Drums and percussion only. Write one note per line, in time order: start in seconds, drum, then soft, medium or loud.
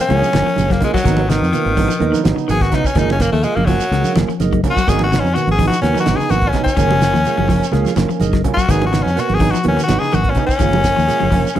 0.00 snare soft
0.09 closed hi-hat medium
0.09 high conga medium
0.09 low conga medium
0.22 closed hi-hat soft
0.22 high conga medium
0.22 shekere medium
0.33 snare medium
0.33 closed hi-hat medium
0.33 high conga medium
0.33 shekere medium
0.48 closed hi-hat soft
0.48 shekere soft
0.56 closed hi-hat medium
0.56 high conga medium
0.56 shekere medium
0.70 kick medium
0.70 snare soft
0.70 closed hi-hat soft
0.81 kick medium
0.81 closed hi-hat medium
0.81 low conga loud
0.81 shekere soft
0.94 kick medium
0.94 snare soft
0.94 shekere medium
1.04 kick medium
1.04 snare soft
1.04 closed hi-hat medium
1.04 low conga medium
1.04 shekere medium
1.17 closed hi-hat soft
1.17 high conga medium
1.30 snare medium
1.30 closed hi-hat medium
1.30 shekere medium
1.44 shekere soft
1.53 closed hi-hat medium
1.53 shekere medium
1.67 closed hi-hat soft
1.77 kick medium
1.77 open hi-hat medium
1.77 high conga medium
1.77 low conga medium
1.77 shekere soft
1.91 closed hi-hat soft
1.91 shekere medium
2.01 closed hi-hat medium
2.01 high conga medium
2.01 low conga medium
2.14 closed hi-hat soft
2.14 high conga medium
2.14 shekere medium
2.25 snare medium
2.25 closed hi-hat medium
2.25 high conga loud
2.25 shekere medium
2.38 shekere soft
2.49 closed hi-hat medium
2.49 high conga medium
2.49 shekere medium
2.61 kick medium
2.61 snare soft
2.61 closed hi-hat soft
2.72 kick medium
2.72 snare soft
2.72 closed hi-hat medium
2.72 low conga medium
2.72 shekere soft
2.84 kick medium
2.84 shekere medium
2.95 kick medium
2.95 snare soft
2.95 closed hi-hat medium
2.95 low conga medium
2.95 shekere medium
3.10 high conga loud
3.20 kick medium
3.20 snare medium
3.20 closed hi-hat medium
3.20 shekere medium
3.34 shekere soft
3.43 closed hi-hat medium
3.43 shekere medium
3.57 closed hi-hat soft
3.57 high conga medium
3.67 kick medium
3.67 open hi-hat medium
3.67 high conga medium
3.67 low conga medium
3.67 shekere soft
3.80 shekere medium
3.92 snare soft
3.92 closed hi-hat medium
4.04 closed hi-hat soft
4.04 high conga medium
4.04 shekere medium
4.16 snare medium
4.16 closed hi-hat medium
4.16 high conga loud
4.16 shekere medium
4.30 closed hi-hat soft
4.30 shekere soft
4.40 snare soft
4.40 closed hi-hat medium
4.40 high conga medium
4.40 shekere medium
4.52 kick medium
4.52 closed hi-hat soft
4.64 kick medium
4.64 closed hi-hat medium
4.64 low conga medium
4.64 shekere soft
4.77 kick medium
4.77 shekere medium
4.87 kick medium
4.87 snare soft
4.87 closed hi-hat medium
4.87 low conga medium
4.87 shekere medium
4.99 closed hi-hat soft
4.99 high conga loud
5.12 snare medium
5.12 closed hi-hat medium
5.12 shekere loud
5.26 shekere soft
5.36 closed hi-hat medium
5.36 shekere medium
5.47 closed hi-hat soft
5.47 high conga medium
5.59 kick medium
5.59 open hi-hat medium
5.59 high conga medium
5.59 low conga medium
5.59 shekere soft
5.72 snare soft
5.72 closed hi-hat soft
5.72 shekere medium
5.82 snare soft
5.82 closed hi-hat medium
5.82 low conga medium
5.95 closed hi-hat soft
5.95 high conga medium
5.95 shekere medium
6.06 snare medium
6.06 closed hi-hat medium
6.06 high conga medium
6.06 shekere medium
6.20 snare soft
6.20 shekere soft
6.29 closed hi-hat medium
6.29 high conga medium
6.29 shekere medium
6.41 kick medium
6.41 closed hi-hat soft
6.53 kick medium
6.53 snare soft
6.53 closed hi-hat medium
6.53 low conga medium
6.53 shekere soft
6.66 kick medium
6.66 shekere medium
6.77 kick loud
6.77 closed hi-hat medium
6.77 shekere medium
6.91 high conga medium
7.01 snare medium
7.01 closed hi-hat medium
7.01 shekere medium
7.15 snare soft
7.15 shekere soft
7.25 closed hi-hat medium
7.25 shekere medium
7.37 closed hi-hat soft
7.37 high conga medium
7.48 kick medium
7.48 open hi-hat medium
7.48 high conga medium
7.48 low conga medium
7.48 shekere soft
7.62 closed hi-hat soft
7.62 shekere medium
7.72 snare soft
7.72 closed hi-hat medium
7.72 low conga medium
7.85 snare soft
7.85 closed hi-hat soft
7.85 high conga medium
7.85 shekere medium
7.96 snare medium
7.96 closed hi-hat medium
7.96 high conga medium
7.96 shekere loud
8.10 closed hi-hat soft
8.10 shekere soft
8.20 closed hi-hat medium
8.20 high conga medium
8.20 shekere loud
8.33 kick medium
8.33 snare soft
8.33 closed hi-hat soft
8.44 kick medium
8.44 closed hi-hat medium
8.44 low conga medium
8.44 shekere soft
8.57 kick medium
8.57 shekere medium
8.68 kick medium
8.68 closed hi-hat medium
8.68 low conga medium
8.68 shekere medium
8.82 closed hi-hat soft
8.82 high conga medium
8.93 snare medium
8.93 closed hi-hat medium
8.93 shekere medium
9.07 snare soft
9.07 shekere soft
9.17 snare soft
9.17 closed hi-hat medium
9.17 shekere medium
9.29 closed hi-hat soft
9.29 high conga medium
9.40 kick medium
9.40 open hi-hat medium
9.40 high conga medium
9.40 low conga medium
9.40 shekere soft
9.53 closed hi-hat soft
9.53 shekere medium
9.64 closed hi-hat medium
9.64 high conga medium
9.64 low conga medium
9.77 snare soft
9.77 closed hi-hat soft
9.77 shekere medium
9.88 snare medium
9.88 closed hi-hat medium
9.88 high conga medium
9.88 shekere medium
10.02 snare soft
10.02 shekere soft
10.12 closed hi-hat medium
10.12 high conga medium
10.12 shekere loud
10.24 kick medium
10.24 closed hi-hat soft
10.35 kick medium
10.35 closed hi-hat soft
10.35 low conga medium
10.35 shekere soft
10.49 kick medium
10.49 shekere medium
10.59 kick loud
10.59 closed hi-hat medium
10.59 shekere medium
10.73 high conga loud
10.84 kick medium
10.84 snare medium
10.84 closed hi-hat soft
10.84 shekere medium
10.97 snare soft
10.97 shekere soft
11.08 snare soft
11.08 closed hi-hat medium
11.08 shekere medium
11.20 closed hi-hat soft
11.20 high conga medium
11.31 kick medium
11.31 open hi-hat medium
11.31 high conga medium
11.31 low conga medium
11.31 shekere soft
11.45 closed hi-hat soft
11.45 shekere medium
11.56 closed hi-hat medium
11.56 high conga medium
11.56 low conga medium